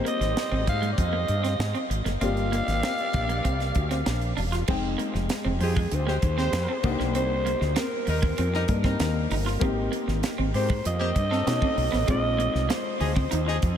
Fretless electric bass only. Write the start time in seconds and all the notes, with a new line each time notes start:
0.20 G#1
0.51 G#1
0.68 G#2
0.98 F2
1.29 G2
1.59 G#2
1.90 G#1
2.05 F#1
2.21 G1
2.67 G#1
3.14 A#1
3.45 C2
3.75 D2
4.06 A#1
4.37 E1
4.68 F1
5.14 F1
5.45 F1
5.60 F2
5.92 D2
6.23 D#2
6.52 F2
6.84 C2
7.00 B1
7.15 C2
7.61 D2
8.07 D#2
8.38 F2
8.68 G2
9.00 D#2
9.31 G1
9.62 G#1
10.08 G#1
10.38 G#1
10.54 G#2
10.85 F2
11.16 G2
11.47 B2
11.77 B1
11.93 A1
12.08 A#1
12.55 C2
13.00 D2
13.32 D#2
13.63 F2